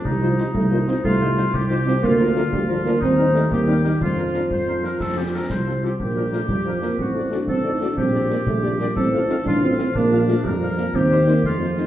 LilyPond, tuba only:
\new Staff \with { instrumentName = "Tuba" } { \clef bass \time 6/8 \key bes \major \tempo 4. = 121 c,4. c,4. | c,4. c,4. | d,4. d,4. | ees,4. ees,4. |
f,4. f,4. | f,4. c,4. | bes,,4. f,4. | a,,4. a,,4. |
bes,,4. bes,,4. | a,,4. a,,4. | bes,,4. f,4. | ees,4. f,4. | }